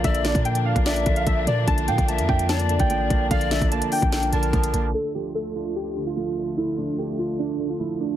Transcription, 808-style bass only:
X:1
M:4/4
L:1/16
Q:1/4=147
K:Dm
V:1 name="808-style bass" clef=bass
B,,,3 B,,4 B,,,3 B,,,2 B,,,2 B,,2 | B,,,2 B,, B,,,2 F,, F,,4- F,, A,,,3 B,,,2 | B,,,3 B,,,2 z2 B,,,3 B,,,2 B,,,2 B,,,2 | z16 |
z16 |]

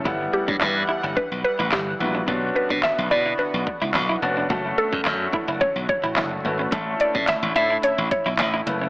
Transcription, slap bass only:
X:1
M:4/4
L:1/16
Q:1/4=108
K:Edor
V:1 name="Slap bass" clef=bass
G,,,2 z G,, G,,2 z G,,, z B,,, z A,,, G,,,2 ^A,,,2 | B,,,2 z B,, z B,,, B,,2 z B,,, z C,, B,,,2 =F,,,2 | F,,,2 z F,, F,,2 z F,,, z B,,, z A,,, F,,,2 ^G,,,2 | A,,,2 z A,, z A,,, A,,2 z A,,, z B,,, A,,,2 F,,,2 |]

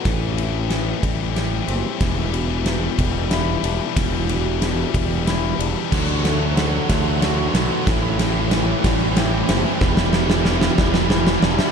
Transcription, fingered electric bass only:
X:1
M:6/8
L:1/16
Q:3/8=61
K:Em
V:1 name="Fingered electric bass" clef=bass
A,,,6 A,,,4 F,,, z | E,,,6 E,,,4 E,,, z | E,,,6 E,,,4 E,,, z | D,,6 D,,4 B,,, z |
A,,,6 A,,,4 F,,, z | E,,,6 E,,,4 E,,, z |]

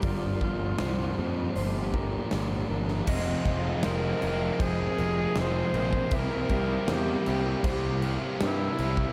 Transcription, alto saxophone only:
X:1
M:4/4
L:1/8
Q:1/4=79
K:Fdor
V:1 name="Alto saxophone"
F F2 z G3 z | z2 B2 A2 c2 | B2 G2 G z =E2 |]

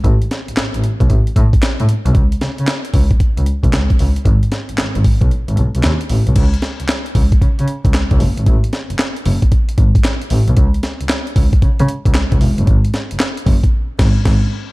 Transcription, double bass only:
X:1
M:4/4
L:1/16
Q:"Swing 16ths" 1/4=114
K:C#m
V:1 name="Double bass" clef=bass
A,,,2 z A,,, A,,, A,,, z B,,, A,,, z A,, z2 A,, z B,,, | C,, z C, C, z2 C,,2 z C,, z B,,, C,,2 C,, z | G,,,2 z G,,, G,,, G,,, z B,,, z G,,, B,,, B,,, D,, z A,,, B,,, | C,,2 z C,, z2 C,,2 C, C, z C,, z C,, F,,, G,,, |
A,,,2 z F,,, z2 F,,,2 z2 G,,,2 z2 A,,, B,,, | C,,2 z C,, z2 C,,2 C, C, z C,, z C,, E,,, F,,, | G,,,2 z F,,, z2 F,,,2 z2 G,,,2 G,,,2 z2 |]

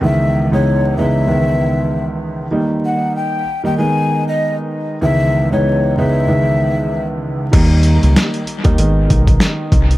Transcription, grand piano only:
X:1
M:4/4
L:1/16
Q:"Swing 16ths" 1/4=96
K:C#dor
V:1 name="Grand piano" clef=bass
[C,,D,E,G,B,]3 [C,,E,G,B,D]3 [C,,E,G,B,D]2 [C,,D,E,G,B,]6- [C,,D,E,G,B,] z | [D,=G,A,D]6 z [D,G,A,D] [D,^G,B,D]6- [D,G,B,D] z | [C,,D,E,G,B,]3 [C,,E,G,B,D]3 [C,,E,G,B,D]2 [C,,D,E,G,B,]6- [C,,D,E,G,B,] z | [D,=G,A,D]6 z [D,G,A,D] [D,^G,B,D]6- [D,G,B,D] z |]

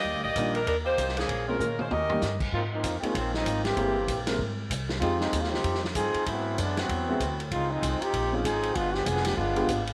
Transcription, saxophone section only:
X:1
M:4/4
L:1/8
Q:"Swing" 1/4=193
K:Eb
V:1 name="Saxophone section"
[B,Gde] [B,Gde]2 [G,DEB] [G,DEB] [B,EGc]2 [F,B,_DA]- | [F,B,_DA] [A,DFB] [A,DFB] [A,DFc] [DGBe]3 z | [K:Ab] z8 | z8 |
z8 | z8 | z8 | z8 |]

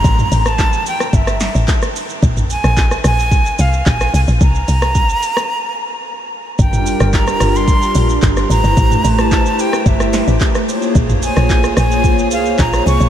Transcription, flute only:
X:1
M:4/4
L:1/16
Q:1/4=110
K:Bb
V:1 name="Flute"
b3 a3 g2 =e4 z4 | z2 _a4 a4 f2 a2 a2 | b12- b2 z2 | g4 b3 c'4- c' z2 b2- |
b3 a3 g2 =e4 z4 | z2 _a4 a4 f2 b2 _d'2 |]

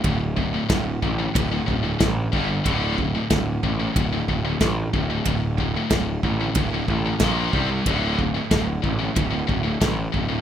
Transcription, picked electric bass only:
X:1
M:4/4
L:1/8
Q:1/4=92
K:Gdor
V:1 name="Picked electric bass" clef=bass
D,,,2 D,,, A,,, D,,, D,,, A,,, G,,, | D,,,2 D,,, A,,, D,,, D,,, A,,, D,,, | D,,,2 D,,, A,,, D,,, A,,, B,,, C,, | D,,,2 D,,, A,,, D,,, D,,, A,,, D,,, |]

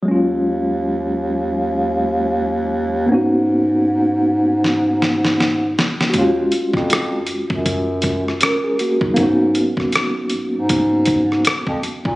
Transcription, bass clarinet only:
X:1
M:4/4
L:1/16
Q:"Swing 16ths" 1/4=79
K:D#m
V:1 name="Bass clarinet" clef=bass
D,,16 | G,,12- G,,3 z | D,,2 z E,,3 F,, F,,4- F,, z4 | G,,3 G,, z2 G,, G,,4- G,, E,, E,, z A,, |]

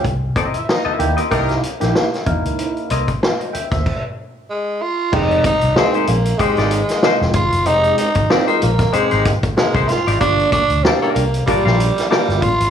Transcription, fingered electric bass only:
X:1
M:4/4
L:1/16
Q:"Swing 16ths" 1/4=95
K:Fdor
V:1 name="Fingered electric bass" clef=bass
C,,2 z4 ^D,, z C,,2 z B,,, z2 =E,, _D,, | z2 C,, z4 ^D,, z8 | F,,,2 z C,, z2 B,,,2 z A,,,2 z2 F,,, G,,, _G,,, | F,,,2 z A,,, z2 B,,,2 z A,,,2 z2 C,, z A,,, |
G,,,2 z D,, z2 C,,2 z B,,,2 z2 G,,, =A,,, _A,,, |]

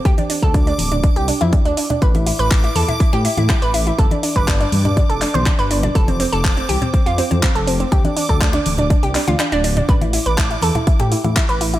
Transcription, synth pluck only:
X:1
M:4/4
L:1/16
Q:1/4=122
K:Am
V:1 name="Synth pluck"
G D D A D D z D D G D E D D D D | B E E B E E A E E G E E E B E E | A D D B D D z D D A D c D B D D | A C C A C C G C C F C C C A C C |
G D D A D D z D D G D F D D D D | B E E B E E A E E G E E E B E E |]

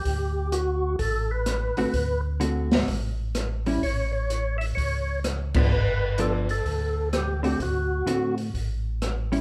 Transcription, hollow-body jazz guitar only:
X:1
M:4/4
L:1/8
Q:"Swing" 1/4=127
K:D
V:1 name="Hollow-body jazz guitar"
z6 z [D,A,=CF] | z2 [D,A,=CF] z4 [G,^CE] | z6 z [=F,B,D] | z2 [=F,B,D] z4 [D,A,=C^F] |
z2 [D,A,=CF] z4 [G,^CE] |]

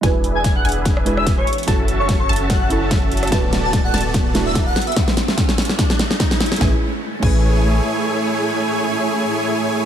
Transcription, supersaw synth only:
X:1
M:4/4
L:1/8
Q:"Swing 16ths" 1/4=146
K:A
V:1 name="Supersaw synth"
[DGBeg]3 [DGBeg]4 z | [CFAea]3 [CFAea]4- [CFAea] | [B,FAda]3 [B,FAda]4 z | z8 |
[A,EGcg] z2 [A,EGcg]4- [A,EGcg]- | [A,EGcg]8 |]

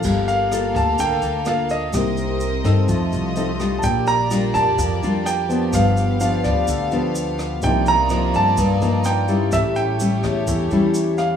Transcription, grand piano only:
X:1
M:4/4
L:1/16
Q:1/4=126
K:Gm
V:1 name="Grand piano"
f2 f4 a2 g4 f2 e2- | e6 z8 z3/2 a/2 | g2 b4 a6 g4 | f4 f2 d8 z2 |
g2 b4 a6 g4 | =e2 g8 z4 f2 |]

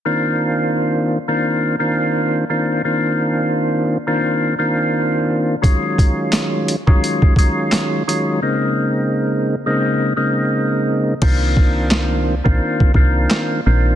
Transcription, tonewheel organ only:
X:1
M:4/4
L:1/16
Q:"Swing 16ths" 1/4=86
K:Bbdor
V:1 name="Tonewheel organ"
[E,B,C=DF]6 z [E,B,CDF]3 [E,B,CDF]4 [E,B,CDF]2 | [E,B,C=DF]6 z [E,B,CDF]3 [E,B,CDF]6 | [E,_G,A,DF]6 z [E,G,A,DF]3 [E,G,A,DF]4 [E,G,A,DF]2 | [D,A,B,CE]6 z [D,A,B,CE]3 [D,A,B,CE]6 |
[E,B,C=DF]6 z [E,B,CDF]3 [E,B,CDF]4 [E,B,CDF]2 |]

